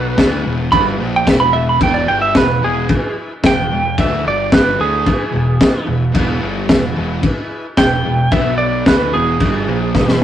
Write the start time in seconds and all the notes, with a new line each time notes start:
Already playing: B1 B2 F#3 B3 B4
0.17 D2 D3 A3 D4 E4 G#4 B4, kick, snare, crash
0.43 E1 E2 B2 E3
0.72 G1 G2 D3 G3 B5, kick, crash
0.78 E4 G#4 B4
0.97 A#1 A#2 F3 A#3
1.16 G5
1.25 E1 E2 B2 E3, kick, snare, crash
1.29 E4 G#4 B4
1.40 B5
1.53 E5
1.69 B5
1.79 E1 E2 B2 E3 E4 G#4, kick, crash
1.83 B4 G5
1.94 D5
2.07 G1 G2 D3 G3 G5
2.22 E5
2.35 E1 E2 B2 E4 B4, kick, snare, crash
2.39 G#4
2.62 E1 E2 B2 E3 G#4
2.89 E4 G#4 B4, muted picked electric bass stroke, muted distorted electric guitar stroke, kick, crash
3.43 E1 E2 B2 E4 G#4 B4 G5, kick, snare, crash
3.71 E1 E2 B2
3.98 D2 D3 A3 D4 E4 G#4 B4 E5, kick, crash
4.24 G1 G2 D3 G3 D4 G4 D5
4.52 B4, kick, snare, crash
4.78 D2 D3 A3 D4 G#4
4.83 E4 G#4 B4
5.06 muted distorted electric guitar stroke, muted picked electric bass stroke, kick, crash
5.31 E1 E2 B2
5.60 E4 G#4 B4, muted distorted electric guitar stroke, muted picked electric bass stroke, kick, snare, crash
5.87 E1 E2 B2
6.12 E1 E2 B2 E3, kick, crash
6.17 E4 G#4 B4
6.40 G1 G2 D3 G3
6.68 E1 E2 B2 E4 G#4, kick, snare, crash
6.72 B4
6.94 E1 E2 B2 E3
7.22 E4 G#4 B4, muted distorted electric guitar stroke, muted picked electric bass stroke, kick, crash
7.76 E1 E2 B2 E4 G#4 B4 G5, kick, snare, crash
8.04 E1 E2 B2
8.31 B1 B2 F#3 B3 F#4 B4 E5, kick, crash
8.58 D5
8.86 D2 D3 A3 D4 E4 G#4 B4, kick, snare, crash
8.90 B4
9.14 E1 E2 B2 E3 G#4
9.39 G1 G2 D3 G3, kick, crash
9.43 E4 G#4 B4
9.67 A#1 A#2 F3 A#3
9.95 E1 E2 B2 E3 E4 G#4 B4, kick, snare
10.08 snare